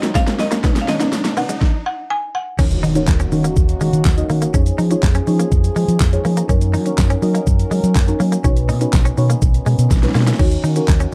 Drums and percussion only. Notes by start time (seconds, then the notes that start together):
0.03 snare, closed hi-hat, shaker
0.15 kick, snare, tambourine, shaker
0.27 snare, closed hi-hat, shaker
0.39 snare, open hi-hat, shaker
0.52 snare, closed hi-hat, shaker
0.64 kick, snare, shaker
0.76 snare, closed hi-hat, shaker
0.88 snare, open hi-hat, shaker
1.00 snare, closed hi-hat, shaker
1.12 snare, tambourine, shaker
1.25 snare, closed hi-hat, shaker
1.37 open hi-hat, shaker
1.49 closed hi-hat, shaker
1.61 kick, snare
2.59 kick, crash, shaker
2.71 closed hi-hat, shaker
2.84 open hi-hat, shaker
2.95 closed hi-hat, shaker
3.07 kick, snare, clap, tambourine, shaker
3.20 closed hi-hat, shaker
3.32 open hi-hat, shaker
3.44 closed hi-hat, shaker
3.56 kick, shaker
3.69 closed hi-hat, shaker
3.81 open hi-hat, shaker
3.93 closed hi-hat, shaker
4.05 kick, snare, clap, tambourine, shaker
4.18 closed hi-hat, shaker
4.30 open hi-hat, shaker
4.42 closed hi-hat, shaker
4.54 kick, shaker
4.66 closed hi-hat, shaker
4.79 open hi-hat, shaker
4.91 closed hi-hat, shaker
5.03 kick, snare, clap, tambourine, shaker
5.15 closed hi-hat, shaker
5.27 open hi-hat, shaker
5.40 closed hi-hat, shaker
5.52 kick, shaker
5.64 closed hi-hat, shaker
5.76 open hi-hat, shaker
5.89 closed hi-hat, shaker
6.00 kick, snare, clap, tambourine, shaker
6.13 closed hi-hat, shaker
6.25 open hi-hat, shaker
6.37 closed hi-hat, shaker
6.49 kick, shaker
6.61 closed hi-hat, shaker
6.74 open hi-hat, shaker
6.86 closed hi-hat, shaker
6.98 kick, snare, clap, tambourine, shaker
7.10 closed hi-hat, shaker
7.22 open hi-hat, shaker
7.35 closed hi-hat, shaker
7.47 kick, shaker
7.59 closed hi-hat, shaker
7.71 open hi-hat, shaker
7.84 closed hi-hat, shaker
7.95 kick, snare, clap, tambourine, shaker
8.08 closed hi-hat, shaker
8.20 open hi-hat, shaker
8.32 closed hi-hat, shaker
8.44 kick, shaker
8.57 closed hi-hat, shaker
8.69 open hi-hat, shaker
8.81 closed hi-hat, shaker
8.93 kick, snare, clap, tambourine, shaker
9.05 closed hi-hat, shaker
9.17 open hi-hat, shaker
9.30 closed hi-hat, shaker
9.42 kick, shaker
9.54 closed hi-hat, shaker
9.66 open hi-hat, shaker
9.79 closed hi-hat, shaker
9.91 kick, snare, tambourine, shaker
9.97 snare
10.03 snare, closed hi-hat, shaker
10.09 snare
10.15 snare, open hi-hat, shaker
10.21 snare
10.27 snare, closed hi-hat, shaker
10.33 snare
10.39 kick, crash
10.51 closed hi-hat, shaker
10.64 open hi-hat, shaker
10.76 closed hi-hat, shaker
10.88 kick, snare, clap, tambourine, shaker
11.00 closed hi-hat, shaker